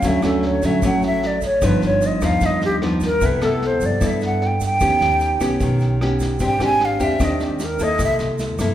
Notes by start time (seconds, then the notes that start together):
0.02 D2 D3 F#3 A3 C#4, kick, snare, shaker
0.07 E5
0.22 D2 F#3 A3 C#4 A4, cross-stick, snare, shaker
0.43 C#5, snare
0.62 A1 F#3 A3 C#4 E5, kick, snare, shaker
0.82 A1 A2 F#3 A3 C#4, kick, cross-stick, snare, shaker
0.87 F#5
1.02 snare, shaker
1.06 E5
1.22 snare
1.27 D5
1.41 C#5, kick, snare, shaker
1.61 G1 G2 F3 B3 D#4, kick, cross-stick, snare, shaker
1.66 B4
1.82 G1 C#5, snare, shaker
2.02 snare, shaker
2.06 D#5
2.21 D#2 F3 B3 D#4 F5, kick, cross-stick, snare, shaker
2.41 D#2 G2, kick, snare, shaker
2.46 D#5
2.61 G4, snare, shaker
2.82 F3 B3 D#4, cross-stick, snare
3.01 kick, snare, shaker
3.05 A#4
3.21 C2 C3 B3 E4 A4, kick, snare, shaker
3.25 B4
3.41 C2 B3 E4 A4, cross-stick, snare, shaker
3.62 snare
3.66 C5
3.81 G2, kick, snare, shaker
3.85 D5
4.00 G2 B3 E4 A4, kick, cross-stick, snare, shaker
4.07 E5
4.20 snare, shaker
4.25 F#5
4.42 snare
4.46 G5
4.60 kick, snare, shaker
4.65 G5
4.80 D#2 D#3 B3 C#4 G4, kick, cross-stick, snare, shaker
5.01 D#2, snare, shaker
5.20 snare, shaker
5.40 B1 B3 C#4 G4, kick, cross-stick, snare, shaker
5.60 B1 D#3, kick, snare, shaker
5.79 snare, shaker
6.01 B3 C#4 G4, cross-stick, snare
6.20 kick, snare, shaker
6.39 G#1 G#3 C4 D4 G4, kick, snare, shaker
6.46 G5
6.60 G#1 C4 D4 G4, cross-stick, snare, shaker
6.64 G#5
6.80 snare
6.85 F5
7.00 D#2 C4 D4 G4 E5, kick, snare, shaker
7.20 D#2 D#3 C4 D4 G4, kick, cross-stick, snare, shaker
7.24 D#5
7.40 G4, snare, shaker
7.59 snare, shaker
7.64 A#4
7.79 A#3 E4 A4 D#5, kick, snare, shaker
7.99 C2 C3, kick, cross-stick, snare, shaker
8.04 E5
8.19 C2, snare, shaker
8.38 snare, shaker
8.58 G2 A#3 E4 A4, kick, cross-stick, snare, shaker